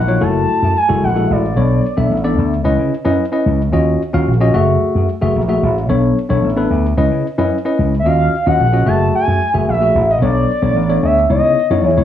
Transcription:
Already playing: slap bass A#1, analog synth lead F#5
0.08 tine electric piano F#3 D#4 F4 C#5
0.21 slap bass F#1, tine electric piano A3 E4 F#4 A4, analog synth lead A5
0.63 slap bass F#2
0.77 analog synth lead G#5
0.89 slap bass F#1, tine electric piano G#3 E4 F#4 A4
1.03 slap bass A#1, analog synth lead F#5
1.16 tine electric piano G#3 E4 F#4 A4
1.30 slap bass A1, analog synth lead D5
1.56 slap bass B1, tine electric piano B3 D4 A4 C#5
1.97 slap bass B1, tine electric piano B3 D4 A4 E5
2.11 slap bass A1
2.24 tine electric piano B3 D4 A4 D5
2.38 slap bass D2
2.64 slap bass C#2, tine electric piano C#4 E4 B4 D#5
2.79 slap bass C#3
3.05 slap bass F#2, tine electric piano C#4 E4 B4 D#5
3.32 tine electric piano C#4 E4 B4 D#5
3.46 slap bass C#2
3.72 slap bass D#2, tine electric piano C#4 F4 F#4 D#5
4.13 slap bass D#2, tine electric piano C#4 F4 F#4 F5
4.27 slap bass A#1
4.40 tine electric piano C#4 F4 F#4 D#5
4.54 slap bass F#1, tine electric piano A3 F#4 G#4 E5
4.95 slap bass F#2
5.21 slap bass F#1, tine electric piano A3 F#4 G#4 E5
5.36 slap bass A#1
5.48 tine electric piano A3 F#4 G#4 E5
5.63 slap bass A1
5.89 slap bass B1, tine electric piano B3 D4 A4 C#5
6.29 slap bass B1, tine electric piano B3 D4 A4 C#5
6.44 slap bass A1
6.57 tine electric piano B3 D4 A4 B4
6.70 slap bass D2
6.97 slap bass C#2, tine electric piano C#4 E4 B4 D#5
7.11 slap bass C#3
7.38 slap bass F#2, tine electric piano C#4 E4 B4 D#5
7.65 tine electric piano C#4 E4 B4 D#5
7.79 slap bass C#2
8.00 analog synth lead E5
8.05 slap bass D#2, tine electric piano C#4 F4 F#4 D#5, analog synth lead F5
8.46 slap bass D#2, tine electric piano C#4 F4 F#4 D#5, analog synth lead F#5
8.60 slap bass A#1
8.73 tine electric piano C#4 F4 F#4 D#5
8.86 slap bass F#1, tine electric piano A3 F#4 G#4 E5, analog synth lead A5
9.14 analog synth lead G#5, muted slap bass stroke
9.28 slap bass F#2
9.54 slap bass F#1, tine electric piano A3 F#4 G#4 E5
9.68 slap bass A#1, analog synth lead E5
9.81 tine electric piano A3 F#4 G#4 E5
9.95 slap bass A1
10.10 analog synth lead D#5
10.22 slap bass B1, tine electric piano B3 D4 A4 C#5, analog synth lead D5
10.62 slap bass B1, tine electric piano B3 D4 A4 C#5
10.76 slap bass A1
10.89 tine electric piano B3 D4 A4 C#5
11.03 slap bass D2, analog synth lead E5
11.30 slap bass C#2, tine electric piano B3 D#4 E4 C#5, analog synth lead D#5
11.43 slap bass C#3
11.70 slap bass F#2, tine electric piano B3 D#4 E4 C#5
11.84 slap bass E2, analog synth lead C#5
11.97 slap bass C#2, tine electric piano B3 D#4 E4 C#5

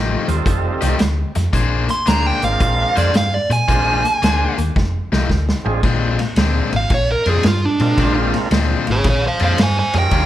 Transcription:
Already playing: fingered electric bass A1, overdriven electric guitar F3 A3 D#4 G4
0.27 fingered electric bass D#2, tonewheel organ G3 C4 D#4 F4 A4, muted overdriven electric guitar stroke, closed hi-hat
0.46 fingered electric bass F1, muted overdriven electric guitar stroke, kick, closed hi-hat
0.81 fingered electric bass C2, overdriven electric guitar F3 A3 D#4 G4, closed hi-hat
0.99 fingered electric bass D2, muted overdriven electric guitar stroke, snare, closed hi-hat
1.35 fingered electric bass F2, muted overdriven electric guitar stroke, snare, closed hi-hat
1.53 fingered electric bass A#1, overdriven electric guitar A#3 D4 G#4 C5, kick, snare, closed hi-hat
1.88 lead electric guitar C6, muted overdriven electric guitar stroke, closed hi-hat
2.06 fingered electric bass D2, overdriven electric guitar A#3 D4 G#4 C5, lead electric guitar A#5, snare, closed hi-hat
2.27 lead electric guitar G5
2.42 fingered electric bass G#1, tonewheel organ G#3 C4 D4 F4 A#4, lead electric guitar F5, muted overdriven electric guitar stroke, closed hi-hat
2.60 fingered electric bass A#1, muted overdriven electric guitar stroke, kick, closed hi-hat
2.96 fingered electric bass F2, overdriven electric guitar A#3 D4 G#4 C5, lead electric guitar D5, closed hi-hat
3.14 fingered electric bass G2, lead electric guitar F5, muted overdriven electric guitar stroke, snare, closed hi-hat
3.34 lead electric guitar D5
3.50 fingered electric bass A#2, lead electric guitar G#5, muted overdriven electric guitar stroke, closed hi-hat
3.68 fingered electric bass A#1, tonewheel organ G#3 C4 D4 F4 A#4, overdriven electric guitar A#3 D4 G#4 C5, kick, closed hi-hat
4.05 muted overdriven electric guitar stroke, closed hi-hat
4.22 fingered electric bass D2, overdriven electric guitar A#3 D4 G#4 C5, snare, closed hi-hat
4.58 fingered electric bass D#2, muted overdriven electric guitar stroke, closed hi-hat
4.76 fingered electric bass F1, muted overdriven electric guitar stroke, kick, snare
5.12 fingered electric bass C2, overdriven electric guitar F3 A3 D#4 G4, snare
5.29 fingered electric bass D2, muted overdriven electric guitar stroke, kick, snare
5.49 snare
5.64 fingered electric bass A1, tonewheel organ G#3 C4 D4 F4 G#4, muted overdriven electric guitar stroke
5.83 fingered electric bass A#1, overdriven electric guitar A#2 G#3 C4 D4, kick, crash
6.19 muted overdriven electric guitar stroke, snare, ride
6.36 fingered electric bass D2, overdriven electric guitar A#2 G#3 C4 D4, snare, ride
6.72 fingered electric bass G#1, lead electric guitar F5, muted overdriven electric guitar stroke, ride
6.90 fingered electric bass A#1, muted overdriven electric guitar stroke, kick, ride
6.94 lead electric guitar C#5
7.12 lead electric guitar A#4
7.26 fingered electric bass F2, overdriven electric guitar A#2 G#3 C4 D4, lead electric guitar G#4, ride
7.43 fingered electric bass G2, muted overdriven electric guitar stroke, snare, ride
7.47 lead electric guitar F4
7.65 lead electric guitar D4
7.80 fingered electric bass A#2, tonewheel organ G#3 C4 D4 F4 A#4, muted overdriven electric guitar stroke, ride
7.98 fingered electric bass A#1, overdriven electric guitar A#2 G#3 C4 D4, kick, snare, ride
8.34 muted overdriven electric guitar stroke, snare, ride
8.51 fingered electric bass D2, overdriven electric guitar A#2 G#3 C4 D4, snare, ride
8.87 fingered electric bass G#1, muted overdriven electric guitar stroke, ride
8.91 lead electric guitar G#4 C#5
9.04 fingered electric bass A#1, muted overdriven electric guitar stroke, kick, snare, ride
9.08 lead electric guitar G#4 C#5
9.27 lead electric guitar C5 F5
9.39 fingered electric bass F2, overdriven electric guitar A#2 G#3 C4 D4, ride
9.44 lead electric guitar C5 F5
9.58 fingered electric bass G2, muted overdriven electric guitar stroke, snare, ride
9.62 lead electric guitar C5 G#5
9.79 lead electric guitar C5 G#5
9.93 fingered electric bass F2, tonewheel organ G3 C#4 D#4 F4 A#4, muted overdriven electric guitar stroke, snare, ride
9.98 lead electric guitar G5
10.11 fingered electric bass D#2, overdriven electric guitar D#3 G3 C#4 F4, kick, ride

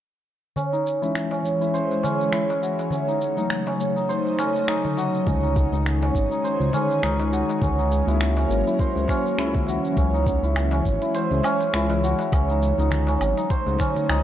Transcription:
0.56 ambient pad E3, santur C#4, darbuka dum, shaker
0.73 santur D#4, shaker
0.87 shaker
0.96 ambient pad G#3
1.02 tine electric piano E3 G#3 C#4, ambient pad C#4, santur E4, shaker
1.15 ambient pad G#4, finger snap, shaker
1.31 santur C#4, darbuka tek, shaker
1.43 tine electric piano E3 G#3 C#4, shaker
1.61 santur E4, shaker
1.74 santur C5, shaker
1.91 darbuka ka, shaker
2.03 santur C#4, darbuka tek, darbuka dum, shaker
2.20 darbuka ka, shaker
2.32 santur E4, finger snap, shaker
2.50 darbuka tek, shaker
2.62 santur F#4, shaker
2.79 darbuka tek, shaker
2.90 ambient pad C#3, santur C#4, darbuka dum, shaker
3.08 santur D#4, darbuka tek, shaker
3.21 ambient pad F#3, shaker
3.37 tine electric piano F#3 A3 D#4, santur D#4, darbuka ka, shaker
3.47 ambient pad A3, finger snap, shaker
3.57 ambient pad D#5
3.61 ambient pad D#4
3.67 santur C#4, ambient pad A4, darbuka tek, shaker
3.77 tine electric piano F#3 A3 D#4, shaker
3.96 santur D#4, shaker
4.09 santur C5, shaker
4.25 darbuka ka, shaker
4.38 santur C#4, finger snap, darbuka tek, shaker
4.55 darbuka ka, shaker
4.68 santur D#4, finger snap, shaker
4.85 darbuka ka, darbuka dum, shaker
4.97 santur F#4, darbuka ka, shaker
5.15 shaker
5.26 analog synth bass C#2, ambient pad D#3, santur C#4, kick, darbuka dum, shaker
5.43 santur D#4, shaker
5.56 kick, shaker
5.64 ambient pad G#3 G#4
5.71 analog synth bass C#2, tine electric piano G#3 C#4 D#4, santur D#4, shaker
5.79 ambient pad C#4
5.86 finger snap, shaker
6.02 santur C#4, darbuka tek, shaker
6.13 analog synth bass G#1, tine electric piano G#3 C#4 D#4, kick, shaker
6.31 santur D#4, shaker
6.44 santur C5, shaker
6.60 analog synth bass C#2, darbuka ka, shaker
6.73 santur C#4, darbuka tek, darbuka dum, shaker
6.90 darbuka ka, shaker
7.03 analog synth bass C#2, santur D#4, finger snap, shaker
7.19 darbuka tek, shaker
7.32 santur F#4, shaker
7.49 darbuka tek, shaker
7.61 analog synth bass C#2, ambient pad F#3, santur C#4, kick, darbuka dum, shaker
7.77 santur D#4, ambient pad A#4, darbuka tek, shaker
7.88 ambient pad A#3, shaker
8.07 analog synth bass C#2, tine electric piano A#3 C#4 F#4, santur E4, darbuka ka, shaker
8.21 finger snap, shaker
8.37 santur C#4, darbuka tek, shaker
8.49 analog synth bass G#1, tine electric piano A#3 C#4 F#4, shaker
8.67 santur E4, shaker
8.79 santur C5, kick, shaker
8.95 analog synth bass C#2, darbuka ka, shaker
9.08 tine electric piano A#3 C#4 F#4, santur C#4, finger snap, kick, darbuka tek, shaker
9.25 darbuka ka, shaker
9.38 analog synth bass C#2, santur E4, finger snap, shaker
9.53 kick, darbuka ka, darbuka dum, shaker
9.67 tine electric piano E3 G#3 C#4, santur F#4, darbuka ka, shaker
9.85 shaker
9.96 analog synth bass C#2, ambient pad E3, santur C#4, kick, closed hi-hat, shaker
10.14 ambient pad G#3, santur D#4, shaker
10.26 kick, shaker
10.42 analog synth bass C#2, santur E4, shaker
10.56 finger snap, closed hi-hat, low woodblock, shaker
10.71 santur C#4, closed hi-hat, darbuka tek, shaker
10.85 analog synth bass G#1, ambient pad G#4, kick, shaker
11.02 santur E4, closed hi-hat, shaker
11.15 santur C5, closed hi-hat, shaker
11.31 analog synth bass C#2, darbuka ka, shaker
11.43 santur C#4, darbuka tek, low woodblock, shaker
11.60 closed hi-hat, darbuka ka, shaker
11.73 analog synth bass C#2, santur E4, finger snap, closed hi-hat, shaker
11.90 closed hi-hat, darbuka tek, shaker
12.04 santur F#4, shaker
12.19 darbuka tek, shaker
12.32 analog synth bass C#2, ambient pad F#3, santur C#4, kick, closed hi-hat, low woodblock, shaker
12.48 santur D#4, darbuka tek, shaker
12.57 ambient pad A3
12.62 shaker
12.78 analog synth bass C#2, santur D#4, ambient pad D#4, darbuka ka, shaker
12.91 finger snap, closed hi-hat, darbuka dum, shaker
13.07 santur C#4, ambient pad D#5, closed hi-hat, darbuka tek, shaker
13.20 analog synth bass G#1, low woodblock, shaker
13.37 santur D#4, ambient pad A4, closed hi-hat, shaker
13.50 santur C5, kick, closed hi-hat, shaker
13.66 analog synth bass C#2, darbuka ka, shaker
13.79 santur C#4, finger snap, kick, darbuka tek, darbuka dum, shaker
13.95 closed hi-hat, darbuka ka, darbuka dum, shaker
14.09 analog synth bass C#2, santur D#4, finger snap, closed hi-hat, low woodblock, shaker

